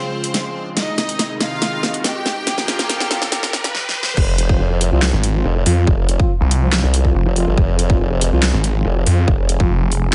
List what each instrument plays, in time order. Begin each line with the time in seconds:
Already playing: analog synth pad C#3 F3 G#3 F4, violin section C4 C5, riser
0.24 closed hi-hat
0.34 snare, closed hi-hat
0.77 analog synth pad C3 D#3 D#4, violin section D#4 D#5, snare, closed hi-hat
0.98 snare, closed hi-hat
1.09 closed hi-hat
1.19 snare, closed hi-hat
1.41 violin section F4 F5, snare, closed hi-hat
1.62 snare, closed hi-hat
1.83 snare
1.94 closed hi-hat
2.04 violin section G4 G5, snare, closed hi-hat
2.26 snare
2.47 analog synth pad C#3 F3 A#3 F4 A#4, snare, closed hi-hat
2.58 snare
2.68 snare, closed hi-hat
2.79 snare, closed hi-hat
2.89 snare, closed hi-hat
3.00 snare
3.11 snare, closed hi-hat
3.22 snare
3.32 snare, closed hi-hat
3.43 snare
3.53 snare
3.64 snare, closed hi-hat
3.75 snare
3.89 snare
4.03 snare
4.17 wobble bass F1, analog synth pad F3 C4 F4, kick, crash
4.38 closed hi-hat
4.49 brass ensemble F3 C4 F4, kick
4.60 wobble bass F1
4.81 closed hi-hat
4.92 wobble bass C2, brass ensemble F3 C4 F4
5.02 snare, clap
5.13 detuned saw bass G#1
5.24 closed hi-hat
5.34 brass ensemble F3 C4 F4
5.45 wobble bass F1
5.66 detuned saw bass F2, brass ensemble F3 C4 F4, open hi-hat
5.87 wobble bass F1, kick
6.09 closed hi-hat
6.20 brass ensemble F3 C4 F4, kick
6.41 detuned saw bass C2
6.51 closed hi-hat
6.62 brass ensemble F3 C4 F4
6.72 snare, clap
6.83 wobble bass C2
6.94 closed hi-hat
7.05 brass ensemble F3 C4 F4, kick
7.15 detuned saw bass F1
7.26 wobble bass F1
7.36 brass ensemble F3 C4 F4, open hi-hat
7.47 wobble bass G1
7.58 wobble bass F1, analog synth pad G#4, kick
7.79 closed hi-hat
7.90 brass ensemble F3 C4 F4, kick
8.00 wobble bass F1
8.21 closed hi-hat
8.32 wobble bass C2, brass ensemble F3 C4 F4
8.43 snare, clap
8.54 detuned saw bass G#1
8.64 closed hi-hat
8.75 brass ensemble F3 C4 F4
8.85 wobble bass F1
9.06 detuned saw bass F2, brass ensemble F3 C4 F4, open hi-hat
9.28 wobble bass F1, kick
9.49 closed hi-hat
9.60 detuned saw bass F1, brass ensemble F3 C4 F4, kick
9.92 open hi-hat